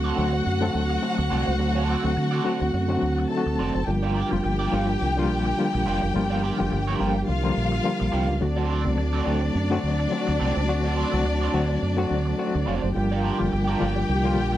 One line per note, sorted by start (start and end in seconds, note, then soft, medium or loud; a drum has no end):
0.00 0.12 D2 medium
0.00 0.16 D3 medium
0.00 3.83 D3 medium
0.00 0.16 F#3 medium
0.00 0.17 A3 medium
0.00 3.83 A3 medium
0.00 0.17 C4 medium
0.00 3.83 C4 medium
0.00 0.18 F#4 medium
0.00 3.26 F#4 medium
0.00 3.83 F#4 medium
0.00 3.26 F#5 medium
0.04 0.15 C4 medium
0.04 0.16 F#4 medium
0.04 0.16 A4 medium
0.04 0.17 D5 medium
0.16 0.40 D2 medium
0.16 0.49 D3 medium
0.16 0.49 F#3 medium
0.16 0.49 A3 medium
0.16 0.34 C4 medium
0.16 0.50 C4 medium
0.16 0.33 F#4 medium
0.16 0.50 F#4 medium
0.16 0.32 A4 medium
0.16 0.32 D5 medium
0.33 muted clean electric guitar stroke soft
0.45 0.68 F#2 loud
0.45 muted clean electric guitar stroke soft
0.61 0.93 D3 medium
0.61 0.93 F#3 medium
0.61 0.93 A3 medium
0.61 0.93 C4 medium
0.61 0.94 A4 loud
0.61 muted clean electric guitar stroke soft
0.75 0.97 D2 medium
0.90 muted clean electric guitar stroke soft
1.02 1.47 D3 medium
1.02 1.47 F#3 medium
1.02 1.47 A3 medium
1.02 1.47 C4 medium
1.02 1.47 F#4 medium
1.18 1.28 D2 medium
1.18 muted clean electric guitar stroke medium
1.30 1.44 C2 loud
1.30 1.51 C4 loud
1.30 1.47 F#4 medium
1.30 1.46 A4 medium
1.30 1.46 D5 loud
1.47 1.60 C#2 loud
1.47 muted clean electric guitar stroke soft
1.59 1.95 D2 medium
1.59 1.91 D3 medium
1.59 1.92 F#3 medium
1.59 1.92 A3 medium
1.59 1.92 C4 medium
1.59 1.92 F#4 medium
1.59 muted clean electric guitar stroke soft
1.75 1.86 C4 medium
1.75 1.87 F#4 medium
1.75 1.88 A4 medium
1.75 1.88 D5 medium
1.88 2.05 C4 medium
1.88 2.03 F#4 medium
1.88 2.03 A4 medium
1.88 2.02 D5 medium
2.02 2.14 D2 medium
2.02 2.35 D3 medium
2.02 2.35 F#3 medium
2.02 2.35 A3 medium
2.02 2.35 C4 medium
2.02 2.36 F#4 medium
2.02 muted clean electric guitar stroke soft
2.16 2.39 D3 loud
2.16 muted clean electric guitar stroke soft
2.31 2.43 C4 medium
2.31 2.44 F#4 medium
2.31 2.44 A4 medium
2.31 2.45 D5 medium
2.44 2.77 D3 medium
2.44 2.77 F#3 medium
2.44 2.77 A3 medium
2.44 2.61 C4 medium
2.44 2.77 C4 medium
2.44 2.61 F#4 medium
2.44 2.78 F#4 loud
2.44 2.60 A4 medium
2.44 2.60 D5 medium
2.61 2.71 D2 medium
2.61 muted clean electric guitar stroke soft
2.73 2.96 F#2 loud
2.73 muted clean electric guitar stroke soft
2.88 3.20 D3 loud
2.88 3.21 F#3 medium
2.88 3.21 A3 medium
2.88 3.21 C4 medium
2.88 3.21 F#4 loud
2.88 muted clean electric guitar stroke soft
3.02 3.24 D2 loud
3.18 muted clean electric guitar stroke soft
3.29 3.74 D3 medium
3.29 3.74 F#3 medium
3.29 3.75 A3 medium
3.29 3.75 C4 medium
3.29 3.38 D#4 medium
3.29 3.86 A4 medium
3.29 3.86 A5 medium
3.37 3.78 F#4 loud
3.46 3.56 D2 medium
3.46 muted clean electric guitar stroke soft
3.59 3.71 F1 medium
3.59 3.79 C4 medium
3.59 3.75 F#4 medium
3.59 3.74 A4 medium
3.59 3.73 D5 loud
3.74 3.85 F#1 medium
3.74 muted clean electric guitar stroke soft
3.86 4.22 G1 loud
3.86 4.19 D3 medium
3.86 4.19 F3 medium
3.86 4.19 G3 medium
3.86 8.38 G3 medium
3.86 4.20 A#3 medium
3.86 8.37 D4 medium
3.86 6.12 F4 medium
3.86 4.20 F4 medium
3.86 7.24 G4 medium
3.86 8.38 A#4 medium
3.86 7.24 G5 medium
3.86 muted clean electric guitar stroke soft
4.03 4.13 A#3 medium
4.03 4.14 F4 medium
4.03 4.14 G4 medium
4.03 4.15 D5 medium
4.14 4.32 A#3 medium
4.14 4.31 F4 medium
4.14 4.30 G4 medium
4.14 4.30 D5 medium
4.31 4.42 F1 medium
4.31 4.63 D3 medium
4.31 4.63 F3 medium
4.31 4.63 G3 medium
4.31 4.63 A#3 medium
4.31 4.64 F4 medium
4.31 muted clean electric guitar stroke medium
4.43 4.67 G1 medium
4.43 muted clean electric guitar stroke soft
4.59 4.70 A#3 medium
4.59 4.71 F4 medium
4.59 4.72 G4 medium
4.59 4.72 D5 loud
4.71 4.95 G1 medium
4.71 5.05 D3 medium
4.71 5.05 F3 medium
4.71 5.05 G3 medium
4.71 4.89 A#3 medium
4.71 5.05 A#3 medium
4.71 4.88 F4 medium
4.71 5.05 F4 medium
4.71 4.87 G4 medium
4.71 4.87 D5 medium
4.88 muted clean electric guitar stroke soft
5.00 5.30 C2 medium
5.00 muted clean electric guitar stroke soft
5.17 5.48 D3 loud
5.17 5.49 F3 medium
5.17 5.49 G3 loud
5.17 5.49 A#3 loud
5.17 5.49 F4 loud
5.17 muted clean electric guitar stroke soft
5.30 5.52 A#1 loud
5.45 muted clean electric guitar stroke soft
5.58 6.02 D3 medium
5.58 6.02 F3 medium
5.58 6.02 G3 medium
5.58 6.02 A#3 medium
5.58 6.03 F4 medium
5.73 5.84 A#1 medium
5.73 muted clean electric guitar stroke soft
5.86 5.99 F1 medium
5.86 6.07 A#3 medium
5.86 6.02 F4 medium
5.86 6.01 G4 loud
5.86 6.01 D5 loud
6.02 6.12 F#1 medium
6.02 muted clean electric guitar stroke medium
6.14 6.50 G1 loud
6.14 6.47 D3 medium
6.14 6.47 F3 medium
6.14 6.47 G3 medium
6.14 6.47 A#3 medium
6.14 6.47 F4 loud
6.14 8.39 G4 medium
6.14 muted clean electric guitar stroke soft
6.30 6.42 A#3 medium
6.30 6.42 F4 medium
6.30 6.43 G4 medium
6.30 6.43 D5 medium
6.43 6.60 A#3 medium
6.43 6.59 F4 medium
6.43 6.58 G4 medium
6.43 6.58 D5 medium
6.58 6.69 F1 medium
6.58 6.90 D3 medium
6.58 6.90 F3 medium
6.58 6.90 G3 medium
6.58 6.91 A#3 medium
6.58 6.91 F4 medium
6.58 muted clean electric guitar stroke soft
6.72 6.94 G1 loud
6.72 muted clean electric guitar stroke soft
6.87 6.98 A#3 medium
6.87 6.99 F4 medium
6.87 6.99 G4 medium
6.87 7.00 D5 medium
6.99 7.22 G1 medium
6.99 7.32 D3 medium
6.99 7.32 F3 medium
6.99 7.32 G3 medium
6.99 7.16 A#3 medium
6.99 7.32 A#3 medium
6.99 7.15 F4 medium
6.99 7.33 F4 medium
6.99 7.15 G4 medium
6.99 7.14 D5 medium
7.15 muted clean electric guitar stroke soft
7.28 7.51 C2 medium
7.28 8.39 F4 medium
7.28 8.39 F5 medium
7.28 muted clean electric guitar stroke medium
7.43 7.75 D3 loud
7.43 7.75 F3 medium
7.43 7.75 G3 medium
7.43 7.76 A#3 medium
7.43 7.76 F4 loud
7.43 muted clean electric guitar stroke soft
7.57 7.79 A#1 loud
7.72 muted clean electric guitar stroke medium
7.84 8.29 D3 medium
7.84 8.29 F3 medium
7.84 8.29 G3 medium
7.84 8.29 A#3 medium
7.84 8.29 F4 loud
8.00 8.11 A#1 medium
8.00 muted clean electric guitar stroke medium
8.12 8.30 C2 medium
8.12 8.33 A#3 medium
8.12 8.28 F4 loud
8.12 8.27 G4 loud
8.12 8.27 D5 medium
8.28 8.39 C#2 medium
8.28 muted clean electric guitar stroke soft
8.41 8.87 D2 loud
8.41 8.73 D3 medium
8.41 12.91 D3 medium
8.41 8.74 F#3 medium
8.41 12.90 A3 medium
8.41 8.74 A3 medium
8.41 12.91 C4 medium
8.41 8.74 C4 medium
8.41 12.91 D4 medium
8.41 12.91 F#4 medium
8.41 8.74 F#4 loud
8.41 12.91 D5 medium
8.41 muted clean electric guitar stroke soft
8.56 8.67 C4 medium
8.56 8.68 F#4 medium
8.56 8.69 A4 medium
8.56 8.69 D5 loud
8.69 8.86 C4 medium
8.69 8.84 F#4 medium
8.69 8.84 A4 medium
8.69 8.83 D5 medium
8.84 8.98 C2 medium
8.84 9.17 D3 medium
8.84 9.17 F#3 medium
8.84 9.17 A3 medium
8.84 9.17 C4 medium
8.84 9.17 A4 loud
8.84 muted clean electric guitar stroke soft
8.97 9.20 D2 medium
8.97 muted clean electric guitar stroke soft
9.13 9.24 C4 medium
9.13 9.25 F#4 medium
9.13 9.25 A4 medium
9.13 9.26 D5 medium
9.25 9.49 D2 medium
9.25 9.59 D3 medium
9.25 9.59 F#3 medium
9.25 9.59 A3 medium
9.25 9.43 C4 medium
9.25 9.59 C4 medium
9.25 9.42 F#4 medium
9.25 9.59 F#4 loud
9.25 9.41 A4 medium
9.25 9.40 D5 medium
9.42 muted clean electric guitar stroke soft
9.54 9.77 F#2 loud
9.54 muted clean electric guitar stroke soft
9.70 10.02 D3 loud
9.70 10.02 F#3 medium
9.70 10.02 A3 medium
9.70 10.03 C4 medium
9.70 10.03 F#4 loud
9.70 muted clean electric guitar stroke soft
9.84 10.06 D2 loud
9.99 muted clean electric guitar stroke medium
10.11 10.55 D3 medium
10.11 10.56 F#3 medium
10.11 10.56 A3 medium
10.11 10.56 C4 medium
10.11 10.19 F4 medium
10.19 10.59 F#4 medium
10.27 10.38 D2 medium
10.27 muted clean electric guitar stroke medium
10.40 10.53 C2 loud
10.40 10.60 C4 medium
10.40 10.56 F#4 medium
10.40 10.55 A4 medium
10.40 10.55 D5 loud
10.56 10.69 C#2 loud
10.56 muted clean electric guitar stroke soft
10.68 11.03 D2 medium
10.68 11.00 D3 medium
10.68 11.00 F#3 medium
10.68 11.00 A3 medium
10.68 11.01 C4 medium
10.68 11.01 F#4 loud
10.68 muted clean electric guitar stroke medium
10.84 10.95 C4 medium
10.84 10.96 F#4 medium
10.84 10.96 A4 medium
10.84 10.97 D5 medium
10.96 11.13 C4 medium
10.96 11.12 F#4 medium
10.96 11.12 A4 medium
10.96 11.11 D5 medium
11.12 11.26 C2 medium
11.12 11.44 D3 medium
11.12 11.44 F#3 medium
11.12 11.44 A3 medium
11.12 11.44 C4 medium
11.12 11.44 F#4 medium
11.12 muted clean electric guitar stroke soft
11.25 11.48 D2 medium
11.25 muted clean electric guitar stroke soft
11.41 11.52 C4 medium
11.41 11.53 F#4 medium
11.41 11.53 A4 medium
11.41 11.54 D5 medium
11.52 11.76 D2 medium
11.52 11.85 D3 medium
11.52 11.85 F#3 medium
11.52 11.85 A3 medium
11.52 11.70 C4 medium
11.52 11.86 C4 medium
11.52 11.86 F#4 medium
11.52 11.69 F#4 medium
11.52 11.69 A4 medium
11.52 11.68 D5 medium
11.69 muted clean electric guitar stroke soft
11.82 12.04 F#2 medium
11.82 muted clean electric guitar stroke soft
11.97 12.28 D3 loud
11.97 12.29 F#3 loud
11.97 12.29 A3 medium
11.97 12.29 C4 medium
11.97 12.29 F#4 loud
11.97 muted clean electric guitar stroke soft
12.11 12.33 D2 medium
12.26 muted clean electric guitar stroke medium
12.38 12.82 D3 medium
12.38 12.82 F#3 medium
12.38 12.83 A3 medium
12.38 12.83 C4 medium
12.38 12.83 F#4 loud
12.55 12.65 D2 medium
12.55 muted clean electric guitar stroke soft
12.66 12.80 F1 medium
12.66 12.87 C4 medium
12.66 12.83 F#4 medium
12.66 12.82 A4 medium
12.66 12.82 D5 loud
12.83 12.93 F#1 medium
12.83 muted clean electric guitar stroke soft
12.94 13.30 G1 loud
12.94 13.27 D3 medium
12.94 13.27 F3 medium
12.94 13.27 G3 medium
12.94 14.57 G3 medium
12.94 13.27 A#3 medium
12.94 14.57 D4 medium
12.94 14.57 F4 medium
12.94 13.28 F4 loud
12.94 14.57 G4 medium
12.94 14.57 A#4 medium
12.94 14.57 G5 medium
12.94 muted clean electric guitar stroke soft
13.11 13.22 D4 medium
13.11 13.23 F4 medium
13.11 13.23 A#4 medium
13.11 13.24 D5 medium
13.23 13.40 D4 medium
13.23 13.40 F4 medium
13.23 13.39 A#4 medium
13.23 13.38 D5 medium
13.38 13.50 F1 medium
13.38 13.70 D3 medium
13.38 13.70 F3 medium
13.38 13.70 G3 medium
13.38 13.70 A#3 medium
13.38 13.71 F4 medium
13.38 muted clean electric guitar stroke soft
13.52 13.75 G1 medium
13.52 muted clean electric guitar stroke soft
13.67 13.79 D4 medium
13.67 13.80 F4 medium
13.67 13.80 A#4 medium
13.67 13.81 D5 medium
13.79 14.03 G1 medium
13.79 14.12 D3 medium
13.79 14.12 F3 medium
13.79 14.12 G3 medium
13.79 14.12 A#3 medium
13.79 13.97 D4 medium
13.79 14.12 F4 medium
13.79 13.96 F4 medium
13.79 13.95 A#4 medium
13.79 13.95 D5 medium
13.96 muted clean electric guitar stroke medium
14.09 14.37 C2 loud
14.09 muted clean electric guitar stroke soft
14.24 14.55 D3 loud
14.24 14.56 F3 medium
14.24 14.56 G3 medium
14.24 14.56 A#3 medium
14.24 14.56 F4 loud
14.24 muted clean electric guitar stroke soft
14.37 14.57 A#1 loud
14.52 muted clean electric guitar stroke soft